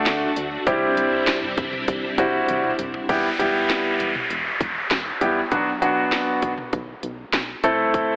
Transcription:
0.00 0.28 A3 medium
0.00 0.64 A3 medium
0.00 0.28 D4 medium
0.00 0.64 D4 medium
0.00 0.28 F#4 medium
0.00 0.64 F#4 medium
0.00 0.28 A4 loud
0.06 0.27 D2 loud
0.06 snare loud
0.06 closed hi-hat medium
0.36 0.58 D2 loud
0.36 closed hi-hat medium
0.67 0.88 C2 loud
0.67 3.07 C3 medium
0.67 1.36 G3 medium
0.67 3.07 G3 medium
0.67 1.36 C4 medium
0.67 3.07 C4 medium
0.67 3.07 D4 medium
0.67 1.36 E4 medium
0.67 3.07 E4 medium
0.67 1.36 G4 medium
0.67 kick loud
0.67 closed hi-hat medium
0.97 1.29 C2 loud
0.97 closed hi-hat medium
1.27 snare loud
1.27 closed hi-hat medium
1.42 mid tom medium
1.57 1.79 C2 medium
1.57 kick medium
1.57 closed hi-hat medium
1.57 mid tom loud
1.73 mid tom loud
1.88 2.09 C2 loud
1.88 kick loud
1.88 closed hi-hat medium
2.18 2.39 C2 loud
2.18 2.70 G3 medium
2.18 2.70 C4 medium
2.18 2.70 E4 medium
2.18 2.70 F#4 loud
2.18 kick loud
2.18 closed hi-hat medium
2.18 cowbell medium
2.49 2.70 C2 loud
2.49 closed hi-hat medium
2.49 high tom medium
2.64 mid tom medium
2.79 3.00 C2 loud
2.79 closed hi-hat medium
2.79 mid tom medium
2.94 floor tom medium
3.09 3.30 E1 loud
3.09 3.26 G3 medium
3.09 3.26 B3 medium
3.09 3.26 E4 medium
3.09 3.26 G4 medium
3.09 kick loud
3.09 closed hi-hat medium
3.09 downlifter medium
3.39 3.71 E1 loud
3.39 4.08 G3 medium
3.39 4.09 B3 medium
3.39 4.09 E4 medium
3.39 4.08 G4 medium
3.39 closed hi-hat medium
3.70 snare loud
3.70 closed hi-hat medium
4.00 4.21 E1 medium
4.00 closed hi-hat medium
4.15 mid tom medium
4.30 4.52 E1 loud
4.30 closed hi-hat medium
4.61 4.82 E1 loud
4.61 kick medium
4.61 closed hi-hat medium
4.91 5.12 E1 loud
4.91 snare loud
4.91 closed hi-hat medium
5.21 5.43 E1 loud
5.21 5.39 G3 medium
5.21 5.39 B3 medium
5.21 5.39 E4 medium
5.21 5.39 G4 medium
5.21 closed hi-hat medium
5.52 5.73 B1 loud
5.52 5.69 F#3 medium
5.52 5.69 B3 medium
5.52 5.69 D4 medium
5.52 5.69 F#4 medium
5.52 kick loud
5.52 closed hi-hat medium
5.82 6.14 B1 medium
5.82 6.51 F#3 medium
5.82 6.51 B3 medium
5.82 6.51 D4 medium
5.82 6.51 F#4 medium
5.82 closed hi-hat medium
6.12 snare loud
6.12 closed hi-hat medium
6.42 6.64 B1 medium
6.42 kick medium
6.42 closed hi-hat medium
6.58 mid tom medium
6.73 6.94 B1 loud
6.73 kick medium
6.73 closed hi-hat medium
7.03 7.24 B1 loud
7.03 closed hi-hat medium
7.33 7.55 B1 medium
7.33 snare loud
7.33 closed hi-hat medium
7.64 8.06 C2 loud
7.64 8.12 A3 medium
7.64 8.12 C4 medium
7.64 8.12 E4 medium
7.64 8.12 A4 medium
7.64 closed hi-hat medium
7.94 kick loud
7.94 closed hi-hat medium

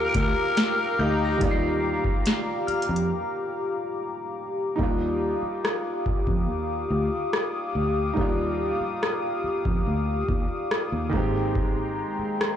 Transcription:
0.00 4.81 F3 medium
0.00 1.38 G3 medium
0.00 1.37 A#3 medium
0.00 1.36 D#4 medium
0.00 1.39 F4 medium
0.00 4.76 G4 medium
0.00 0.16 A#4 loud
0.00 1.38 D5 medium
0.00 4.76 F5 medium
0.00 4.76 A#5 medium
0.00 4.76 D6 medium
0.14 0.32 D2 loud
0.14 1.03 A#4 loud
0.14 kick loud
0.14 closed hi-hat medium
0.57 snare loud
0.57 closed hi-hat medium
0.99 1.35 D2 medium
0.99 1.85 D#4 medium
0.99 2.13 G6 medium
1.25 2.36 A#6 medium
1.38 1.95 D#2 loud
1.38 4.74 D#3 medium
1.38 4.75 G3 medium
1.38 4.76 A#3 medium
1.38 kick loud
1.38 closed hi-hat medium
1.43 4.77 F4 medium
1.43 4.76 D5 medium
1.51 2.60 C7 medium
2.04 muted fingered electric bass stroke soft
2.04 kick medium
2.26 snare loud
2.26 closed hi-hat medium
2.67 3.81 F6 medium
2.67 muted fingered electric bass stroke medium
2.67 closed hi-hat soft
2.82 closed hi-hat medium
2.89 3.10 F2 medium
2.96 closed hi-hat medium
4.76 5.33 D#2 loud
4.76 8.12 G3 medium
4.76 8.13 A#3 medium
4.76 8.12 D#4 medium
4.76 11.09 G4 medium
4.76 11.09 F5 medium
4.76 11.09 D6 medium
4.76 11.09 D#6 medium
4.76 kick loud
4.81 8.14 D4 medium
4.81 8.15 F4 medium
5.42 muted fingered electric bass stroke soft
5.65 cross-stick loud
6.06 muted fingered electric bass stroke soft
6.06 kick medium
6.27 6.48 F2 medium
6.27 kick medium
6.48 6.84 D#2 medium
6.90 7.08 D2 medium
7.33 cross-stick loud
7.75 8.11 D2 medium
8.13 8.71 D#2 loud
8.13 11.08 G3 medium
8.13 11.09 A#3 medium
8.13 11.07 D#4 medium
8.13 kick loud
8.19 11.10 D4 medium
8.19 11.11 F4 medium
8.81 muted fingered electric bass stroke soft
9.03 cross-stick loud
9.44 muted fingered electric bass stroke soft
9.65 9.83 F2 medium
9.65 kick loud
9.86 10.22 D2 medium
10.29 10.46 D#2 medium
10.29 kick medium
10.71 cross-stick loud
10.92 11.14 D#2 medium
11.09 12.02 G#1 medium
11.09 12.56 D#3 medium
11.09 12.56 G#3 medium
11.09 12.56 A#3 medium
11.09 12.56 G5 medium
11.09 12.56 A#5 medium
11.09 12.56 C6 medium
11.09 kick medium
11.15 12.56 C4 medium
11.15 12.56 G4 medium
11.55 kick loud
12.19 muted fingered electric bass stroke soft
12.41 cross-stick loud

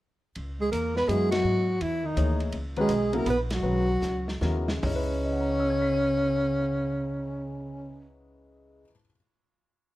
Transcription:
0.35 0.71 C#2 medium
0.35 ride soft
0.60 0.71 G#3 medium
0.60 0.71 G#4 medium
0.71 1.07 E2 medium
0.71 0.94 A#3 medium
0.71 0.94 A#4 medium
0.71 hi-hat pedal medium
0.71 ride medium
0.96 1.10 B3 medium
0.96 1.10 B4 medium
0.96 snare soft
1.08 1.43 F#2 medium
1.08 1.63 F#3 medium
1.08 1.32 G#3 medium
1.08 1.63 B3 soft
1.08 1.63 E4 soft
1.08 1.30 G#4 medium
1.08 1.63 A#4 soft
1.08 1.63 D#5 medium
1.08 hi-hat pedal soft
1.08 ride medium
1.31 1.82 F#3 medium
1.31 1.83 F#4 medium
1.31 snare medium
1.31 ride medium
1.44 1.79 G#2 medium
1.80 2.16 E2 medium
1.80 2.05 E3 medium
1.80 2.07 E4 medium
1.80 ride medium
2.03 2.40 D#3 medium
2.03 2.41 D#4 medium
2.16 2.52 D2 medium
2.16 2.53 E3 soft
2.16 2.53 A#3 soft
2.16 2.53 D#4 soft
2.16 2.53 G#4 soft
2.16 2.53 C#5 soft
2.16 hi-hat pedal soft
2.16 ride medium
2.40 ride soft
2.52 2.88 C#2 medium
2.52 ride medium
2.76 2.88 D#3 medium
2.76 2.88 G#3 medium
2.76 3.15 G#3 medium
2.76 2.88 C#4 medium
2.76 2.88 F#4 medium
2.76 2.88 B4 medium
2.76 ride soft
2.81 3.18 G#4 medium
2.89 3.24 B1 medium
2.89 hi-hat pedal soft
2.89 ride medium
3.12 3.24 C#3 medium
3.12 3.24 F#3 medium
3.12 3.25 A#3 medium
3.12 3.24 B3 medium
3.12 3.25 E4 medium
3.12 3.24 A#4 medium
3.12 3.27 A#4 medium
3.12 ride soft
3.26 3.62 A#1 medium
3.26 3.37 B3 medium
3.26 3.40 B4 medium
3.26 hi-hat pedal soft
3.26 ride medium
3.50 4.37 F#3 medium
3.50 snare medium
3.50 ride medium
3.54 4.39 F#4 medium
3.62 4.00 B1 medium
3.62 3.85 D#3 soft
3.62 3.85 G#3 soft
3.62 3.86 C#4 soft
3.62 3.86 F#4 soft
3.62 3.85 B4 medium
4.02 4.40 C#2 medium
4.02 snare soft
4.02 hi-hat pedal medium
4.28 snare medium
4.41 4.81 D#2 medium
4.41 4.65 C#3 medium
4.41 4.66 F#3 soft
4.41 4.65 B3 soft
4.41 4.66 E4 soft
4.41 4.66 A#4 medium
4.41 snare medium
4.68 8.80 C#3 medium
4.68 snare medium
4.76 8.83 G#3 soft
4.83 8.83 C#2 medium
4.83 8.13 C#3 medium
4.83 8.13 C#4 medium
4.83 8.87 D#4 medium
4.83 kick medium
4.83 floor tom medium
4.83 open hi-hat medium
4.89 8.90 E4 soft
4.95 8.93 B4 medium
5.25 8.82 D#5 soft
5.32 8.86 F#5 soft
5.40 8.90 A#5 soft
5.50 8.95 C#6 soft
5.60 9.00 E6 soft
5.70 9.05 G#6 soft
5.82 9.11 B6 soft
5.94 9.17 D#7 soft

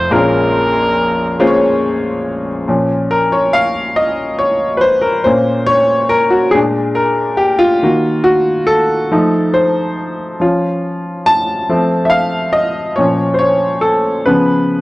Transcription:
0.00 0.12 F1 medium
0.00 0.12 F2 medium
0.00 0.13 A3 medium
0.00 0.11 C4 medium
0.00 0.12 D#4 medium
0.00 0.12 F4 medium
0.00 0.12 C5 medium
0.00 0.15 C5 medium
0.11 2.65 A#1 medium
0.11 2.65 A#2 medium
0.11 1.18 G#3 medium
0.11 1.18 A#3 medium
0.11 0.18 C4 soft
0.11 1.18 F4 medium
0.11 1.18 A#4 medium
0.11 1.84 A#4 loud
0.18 1.21 C#4 medium
1.40 2.47 G#3 medium
1.40 2.47 A#3 medium
1.40 2.47 C#4 medium
1.40 2.47 F4 medium
1.40 1.47 C5 medium
1.47 2.51 C#5 medium
2.68 3.93 A#2 soft
2.68 3.94 F3 soft
2.68 3.94 C#4 soft
3.11 3.16 A#4 medium
3.32 3.55 C#5 medium
3.53 3.98 F5 loud
3.96 4.41 D#5 medium
4.39 4.78 C#5 medium
4.77 4.83 B4 medium
4.77 5.05 C5 medium
5.01 5.26 A#4 medium
5.24 5.83 A#2 soft
5.24 5.84 A#3 soft
5.24 5.84 C#4 soft
5.24 5.70 C5 medium
5.66 6.12 C#5 medium
6.09 6.33 A#4 medium
6.30 6.54 F#4 medium
6.51 7.12 A#2 soft
6.51 7.12 G#3 soft
6.51 7.12 D4 soft
6.51 6.61 G#4 medium
6.95 7.41 A#4 medium
7.37 7.61 G4 medium
7.59 8.27 F4 medium
7.83 9.08 D#3 soft
7.83 9.08 A#3 soft
7.83 8.22 F#4 medium
8.24 8.70 F#4 medium
8.67 9.57 A4 medium
9.12 10.37 F3 medium
9.12 10.37 A3 soft
9.12 10.37 D#4 medium
9.54 10.37 C5 medium
10.40 11.65 F3 soft
10.40 11.66 C#4 soft
10.40 11.66 F4 medium
11.26 12.08 A5 loud
11.69 12.94 F3 soft
11.69 12.94 A3 soft
11.69 12.94 C4 soft
12.05 12.13 E5 medium
12.10 12.55 F5 medium
12.53 12.94 D#5 medium
12.96 14.22 A#2 soft
12.96 14.23 F3 soft
12.96 14.23 C#4 soft
12.96 13.34 C#5 medium
13.34 13.41 C5 medium
13.39 13.84 C#5 medium
13.81 13.91 A4 medium
14.26 14.81 C#3 medium
14.26 14.81 F3 soft
14.26 14.81 B3 medium
14.26 14.81 B4 medium

